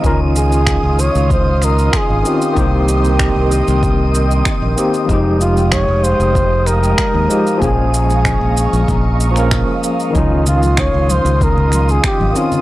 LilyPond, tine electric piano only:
\new Staff \with { instrumentName = "Tine electric piano" } { \time 4/4 \key des \lydian \tempo 4 = 95 <ees des' ees' f'>2.~ <ees des' ees' f'>8 <ees c' des' f'>8 | <ees bes c' g'>2.~ <ees bes c' g'>8 <ees bes c' g'>8 | <f aes ees' g'>2.~ <f aes ees' g'>8 <f aes ees' g'>8 | <f bes des' aes'>2~ <f bes des' aes'>8. <f bes des' bes'>4~ <f bes des' bes'>16 |
<ees des' ees' f'>2.~ <ees des' ees' f'>8 <ees c' des' f'>8 | }